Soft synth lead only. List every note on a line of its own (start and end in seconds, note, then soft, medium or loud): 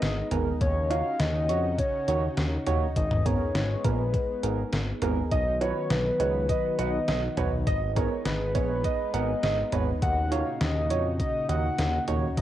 0.00 0.28 D#5 loud
0.61 0.92 C#5 loud
0.91 1.21 F5 loud
1.20 1.78 D#5 loud
1.79 2.63 C#5 medium
2.97 3.27 D#5 loud
3.26 3.86 C#5 loud
3.85 5.02 B4 loud
5.31 5.59 D#5 loud
5.61 5.92 C#5 loud
5.90 6.49 B4 loud
6.49 6.80 B4 loud
6.79 7.38 D#5 loud
7.67 7.80 D#5 loud
7.96 8.09 C#5 loud
8.26 8.53 B4 loud
9.14 9.73 D#5 loud
10.02 10.33 F#5 loud
10.32 10.62 F5 loud
10.61 11.19 D#5 loud
11.20 11.47 D#5 loud
11.49 12.04 F#5 loud
12.37 12.41 D#5 loud